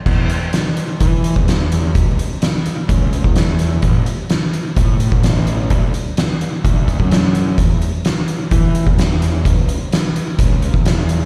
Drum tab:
CC |x---------------|----------------|----------------|----------------|
HH |--x-x-x-x-x-x-x-|x-x-x-x-x-x-x-x-|x-x-x-x-x-x-x-x-|x-x-x-x-x-x-x-x-|
SD |----o-------o-o-|----o-------o-o-|----o-------o---|----o-------o---|
BD |o-------o--o----|o-------o--o----|o-------o--o----|o-------o-oo----|

CC |----------------|----------------|
HH |x-x-x-x-x-x-x-x-|x-x-x-x-x-x-x-x-|
SD |----o-------o-o-|----o-------o---|
BD |o-------o--o----|o-------o--o----|